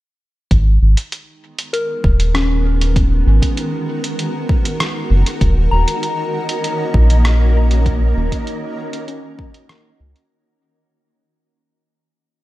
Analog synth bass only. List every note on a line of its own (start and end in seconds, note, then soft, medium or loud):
0.51 0.78 G#1 loud
0.82 0.95 G#1 loud
2.04 3.24 D#1 medium
3.26 3.40 G#1 loud
5.10 5.24 F#1 medium
5.41 5.68 D#1 loud
5.71 5.85 D#1 medium
6.94 8.14 A#1 medium
8.16 8.30 D#1 loud
10.00 10.14 C#2 medium